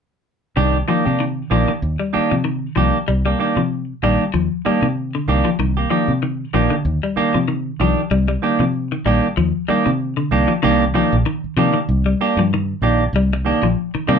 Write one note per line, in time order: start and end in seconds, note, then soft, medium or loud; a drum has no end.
0.56 0.81 C2 medium
0.56 0.77 D#3 medium
0.56 0.83 D#3 medium
0.56 0.77 D4 medium
0.56 0.77 G4 medium
0.56 muted clean electric guitar stroke medium
0.88 1.05 D#3 medium
0.88 1.15 F3 medium
0.88 1.05 A#3 medium
0.88 1.05 D4 medium
0.88 1.04 G4 medium
1.05 1.41 C3 medium
1.05 1.23 A#3 soft
1.05 1.23 D4 soft
1.05 1.23 G4 soft
1.20 1.47 D#3 medium
1.50 1.64 A#1 medium
1.50 1.71 D#3 soft
1.50 1.66 F3 medium
1.50 1.71 A#3 medium
1.50 1.71 D4 medium
1.50 1.71 G4 medium
1.68 1.95 D#3 medium
1.82 1.96 D#2 medium
1.99 2.26 G3 medium
2.13 2.34 D#3 medium
2.13 2.34 A#3 medium
2.13 2.34 D4 medium
2.13 2.34 G4 medium
2.13 muted fingered electric bass stroke soft
2.31 2.67 C3 medium
2.31 2.43 F3 medium
2.45 2.72 D#3 medium
2.76 2.90 C2 medium
2.76 2.97 D#3 medium
2.76 3.03 F3 medium
2.76 2.97 A#3 medium
2.76 2.97 D4 medium
2.76 2.97 G4 medium
3.08 3.33 C2 medium
3.08 3.23 G3 medium
3.26 3.52 G3 medium
3.26 3.38 A#3 soft
3.26 3.39 D4 soft
3.26 3.39 G4 soft
3.39 3.60 D#3 medium
3.39 3.60 A#3 medium
3.39 3.60 D4 medium
3.39 3.60 G4 medium
3.56 3.92 C3 medium
3.56 3.84 F3 medium
4.03 4.16 A#1 medium
4.03 4.23 D#3 medium
4.03 4.30 G3 medium
4.03 4.23 A#3 medium
4.03 4.23 D4 medium
4.03 4.23 G4 medium
4.34 4.48 D#2 medium
4.34 4.61 F3 medium
4.65 4.86 D#3 medium
4.65 4.81 G3 medium
4.65 4.86 A#3 medium
4.65 4.86 D4 medium
4.65 4.86 G4 medium
4.65 muted fingered electric bass stroke soft
4.82 5.18 C3 medium
4.82 5.10 D#3 medium
5.15 5.42 D3 medium
5.28 5.42 C2 medium
5.28 5.48 D#3 medium
5.28 5.49 A#3 medium
5.28 5.49 D4 medium
5.28 5.49 G4 medium
5.45 5.57 F3 medium
5.59 5.84 C2 medium
5.59 5.87 D#3 medium
5.77 5.89 A#3 soft
5.77 5.90 G4 soft
5.77 muted clean electric guitar stroke soft
5.90 6.11 D#3 medium
5.90 6.18 F3 medium
5.90 6.11 A#3 medium
5.90 6.11 D4 medium
5.90 6.12 G4 medium
6.08 6.44 C3 medium
6.23 6.50 D#3 medium
6.54 6.68 A#1 medium
6.54 6.74 D#3 medium
6.54 6.69 F3 medium
6.54 6.74 A#3 medium
6.54 6.74 D4 medium
6.54 6.75 G4 medium
6.70 6.98 D3 medium
6.85 6.99 D#2 medium
7.03 7.30 G3 medium
7.16 7.37 D#3 medium
7.16 7.37 A#3 medium
7.16 7.37 D4 medium
7.16 7.38 G4 medium
7.16 muted fingered electric bass stroke soft
7.34 7.70 C3 medium
7.34 7.47 F3 medium
7.48 7.75 D#3 medium
7.80 7.94 C2 medium
7.80 8.00 D#3 medium
7.80 8.07 F3 medium
7.80 8.01 D4 medium
7.80 8.01 G4 medium
7.80 muted clean electric guitar stroke medium
8.11 8.36 C2 medium
8.11 8.26 G3 medium
8.28 8.55 G3 medium
8.42 8.63 D#3 medium
8.42 8.63 A#3 medium
8.42 8.63 D4 medium
8.42 8.64 G4 medium
8.59 8.95 C3 medium
8.59 8.87 F3 medium
8.92 9.04 D#3 medium
9.05 9.19 A#1 medium
9.05 9.26 D#3 medium
9.05 9.33 G3 medium
9.05 9.26 A#3 medium
9.05 9.27 D4 medium
9.05 9.27 G4 medium
9.37 9.51 D#2 medium
9.37 9.64 F3 medium
9.68 9.89 D#3 medium
9.68 9.84 G3 medium
9.68 9.89 A#3 medium
9.68 9.90 D4 medium
9.68 9.90 G4 medium
9.68 muted fingered electric bass stroke soft
9.86 10.22 C3 medium
9.86 10.13 D#3 medium
10.17 10.44 D3 medium
10.31 10.45 C2 medium
10.31 10.52 D#3 medium
10.31 10.52 A#3 medium
10.31 10.52 D4 medium
10.31 10.52 G4 medium
10.48 10.61 F3 medium
10.63 11.02 C2 medium
10.63 10.90 D#3 medium
10.63 10.83 D#3 medium
10.63 10.84 A#3 medium
10.63 10.84 D4 medium
10.63 10.84 G4 medium
10.94 11.15 D#3 medium
10.94 11.22 F3 medium
10.94 11.15 A#3 medium
10.94 11.15 D4 medium
10.94 11.15 G4 medium
11.13 11.23 A#1 medium
11.26 11.53 D#3 medium
11.44 muted fingered electric bass stroke soft
11.57 11.70 C3 medium
11.57 11.78 D#3 medium
11.57 11.72 F3 medium
11.57 11.78 A#3 medium
11.57 11.78 D4 medium
11.57 11.78 G4 medium
11.74 12.01 D#3 medium
11.89 12.13 C2 loud
12.06 12.33 G3 medium
12.21 12.41 A#3 medium
12.21 12.41 D4 medium
12.21 12.41 G4 medium
12.37 12.72 G2 medium
12.37 12.51 F3 medium
12.54 12.80 D#3 medium
12.82 13.07 A#1 medium
12.82 13.03 D#3 medium
12.82 13.03 A#3 medium
12.82 13.03 D4 medium
12.82 13.04 G4 medium
13.13 13.51 C2 medium
13.13 13.30 G3 medium
13.33 muted clean electric guitar stroke medium
13.45 13.66 D#3 medium
13.45 13.66 A#3 medium
13.45 13.66 D4 medium
13.45 13.66 G4 medium
13.62 13.74 A#1 medium
13.62 13.90 F3 medium
13.94 14.07 D#3 medium
13.94 muted fingered electric bass stroke soft
14.07 14.19 C3 medium
14.07 14.19 D#3 medium
14.07 14.19 G3 medium
14.07 14.19 A#3 medium
14.07 14.19 D4 medium
14.07 14.19 G4 medium